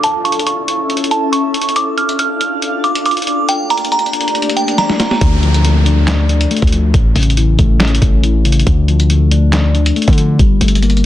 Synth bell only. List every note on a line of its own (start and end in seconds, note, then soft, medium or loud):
0.04 0.22 A5 medium
0.25 0.43 C#6 medium
0.47 0.87 C#6 medium
1.11 1.29 A5 medium
1.32 1.73 C#6 medium
1.76 1.94 D6 medium
1.98 2.16 F6 medium
2.19 2.60 F6 medium
2.84 3.02 D6 medium
3.06 3.46 D6 medium
3.49 3.67 G5 medium
3.70 3.88 A#5 medium
3.92 4.32 A#5 medium
4.57 4.75 G5 medium
4.78 5.19 A#5 medium